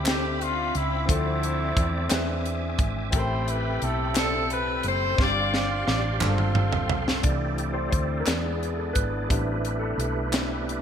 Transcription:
Already playing: fingered electric bass D2, grand piano C3 C4 D4 E4 G4 B4, tonewheel organ C4 E5 B5 D6
0.04 grand piano C4 D4 D#4 G4 A4, snare, clap, closed hi-hat
0.09 horn section G4, grand piano E5
0.41 horn section F4, closed hi-hat
0.75 fingered electric bass C#2, horn section E4, closed hi-hat
1.05 fingered electric bass D2, grand piano D3 F3 C4 D4 E4, tonewheel organ E5, kick, closed hi-hat
1.09 horn section A3 C4 E4, grand piano A4, tonewheel organ D5
1.43 closed hi-hat
1.76 fingered electric bass E2, kick, closed hi-hat
2.09 fingered electric bass E2, grand piano E3 C4 D4 E4 G#4 B4, tonewheel organ G#5, snare, clap, closed hi-hat
2.13 tonewheel organ E5
2.46 closed hi-hat
2.79 fingered electric bass G#1, kick, closed hi-hat
3.11 fingered electric bass A1, grand piano A2 C4 E4 G4 A4, tonewheel organ A4 G5 B5, kick, closed hi-hat
3.15 horn section E4 G4 C5, grand piano A#4
3.21 grand piano B5
3.48 horn section B4, closed hi-hat
3.82 fingered electric bass B1, horn section A4, closed hi-hat
4.13 grand piano C4 E4 G4 A4 D5, snare, clap, closed hi-hat
4.18 horn section A4
4.50 horn section B4, closed hi-hat
4.83 fingered electric bass F#1, closed hi-hat
4.88 horn section C5
5.16 fingered electric bass G1, grand piano G2 C4 D4 F4 G4, tonewheel organ G4 D5 F5 C6, kick, snare
5.20 horn section F4 D5, grand piano C5
5.54 horn section D5, snare
5.88 fingered electric bass A1, horn section D5, snare
6.19 fingered electric bass G1, grand piano G2 C4 D4 F4 G4 G#4, horn section F4 A4, clap, mid tom
6.24 tonewheel organ A4 G5, horn section C5
6.30 grand piano A4
6.38 mid tom
6.55 mid tom
6.72 floor tom
6.89 fingered electric bass B1, floor tom
7.08 snare
7.22 fingered electric bass C2, grand piano E3 A3 D4 D5, french horn section E3 A3 C4 D4, kick, closed hi-hat
7.26 tonewheel organ C4 E4 G4 A4 D5
7.58 closed hi-hat
7.73 grand piano C5
7.91 fingered electric bass D2, grand piano C5, kick, closed hi-hat
8.19 grand piano A#4
8.25 fingered electric bass E2, grand piano G#3 B3 D4 B4, french horn section G#3 B3, snare, clap, closed hi-hat
8.30 tonewheel organ B3 D4 G#4
8.63 closed hi-hat
8.76 grand piano A4
8.93 fingered electric bass G#1, grand piano B4, kick, closed hi-hat
9.29 fingered electric bass A1, grand piano G3 B3 C4 D4, french horn section G3 D4 B4, tonewheel organ A3 E4 G4 B4, kick, closed hi-hat
9.65 closed hi-hat
9.79 grand piano A4
9.98 fingered electric bass B1, closed hi-hat
10.32 grand piano G3 B3 C4 D4, snare, clap, closed hi-hat
10.69 closed hi-hat

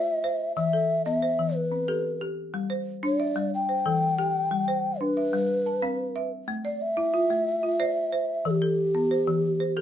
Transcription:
Already playing: marimba F4 C5 D5, ocarina E5
0.24 marimba C5
0.56 marimba E3, ocarina E5
0.73 marimba A4
1.05 marimba B3, ocarina E5
1.22 marimba C5
1.39 marimba E3
1.55 ocarina B4
1.72 marimba C4
1.88 marimba G4 A4
2.21 marimba G4
2.54 marimba G3
2.70 marimba C5
3.03 marimba D4, ocarina D5
3.20 marimba E5
3.36 marimba G3
3.54 ocarina G5
3.69 marimba C5
3.86 marimba E3 A4
4.18 marimba G4
4.51 marimba G3
4.68 marimba C5
5.01 marimba D4, ocarina B4
5.17 marimba E5
5.33 marimba G3
5.66 marimba A5
5.82 marimba C4 F5
6.16 marimba E5
6.48 marimba A3
6.65 marimba D5, ocarina D5
6.82 ocarina E5
6.97 marimba E4
7.14 marimba F4
7.30 marimba A3
7.63 marimba F4
7.80 marimba C5 D5
8.12 marimba C5
8.45 marimba E3, ocarina A4
8.51 ocarina G4
8.62 marimba A4
8.95 marimba B3
9.11 marimba C5
9.28 marimba E3
9.60 marimba C5
9.77 marimba G4 A4

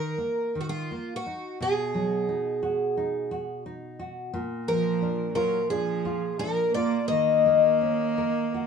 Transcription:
Already playing: nylon-string guitar D#3, twelve-string acoustic guitar A#4
0.18 nylon-string guitar A#3
0.55 nylon-string guitar D#3
0.61 twelve-string acoustic guitar F#4
0.69 twelve-string acoustic guitar F4
0.91 nylon-string guitar A#3
1.16 twelve-string acoustic guitar F#4
1.26 nylon-string guitar D#4
1.61 nylon-string guitar B2, twelve-string acoustic guitar G#4
1.94 nylon-string guitar F#3
2.29 nylon-string guitar D#4
2.63 nylon-string guitar F#4
2.97 nylon-string guitar D#4
3.31 nylon-string guitar F#4
3.66 nylon-string guitar D#4
3.99 nylon-string guitar F#4
4.34 nylon-string guitar A#2
4.67 cello F3, nylon-string guitar F3, twelve-string acoustic guitar A#4
5.02 nylon-string guitar D4
5.34 cello F#3, nylon-string guitar F4, twelve-string acoustic guitar A#4
5.69 cello F3, nylon-string guitar D4, twelve-string acoustic guitar G#4
6.05 nylon-string guitar F4
6.37 cello F3, nylon-string guitar D4, twelve-string acoustic guitar A#4
6.73 cello A#3, nylon-string guitar F4, twelve-string acoustic guitar D5
7.07 nylon-string guitar D#3, cello A#3, twelve-string acoustic guitar D#5
7.46 nylon-string guitar A#3
7.81 nylon-string guitar C#4
8.18 nylon-string guitar A#4
8.54 nylon-string guitar F#4

